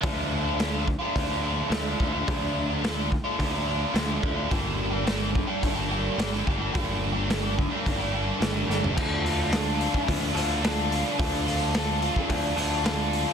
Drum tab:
CC |----------------|----------------|----------------|----------------|
HH |o---o---o---o---|o---o---o---o---|o---o---o---o---|o---o---o---o---|
SD |----o-------o---|----o-------o---|----o-------oo--|----o-------o-o-|
FT |----------------|----------------|----------------|---------------o|
BD |o-----o-o-----o-|o-----o-o-----o-|o-----o-o-----o-|o-----o-o-------|

CC |x---------------|----------------|
HH |--o-o-o-o-o-o-o-|o-o-o-o-o-o-o-o-|
SD |----o-------o---|----o-------o---|
FT |----------------|----------------|
BD |o------oo-------|o------oo-------|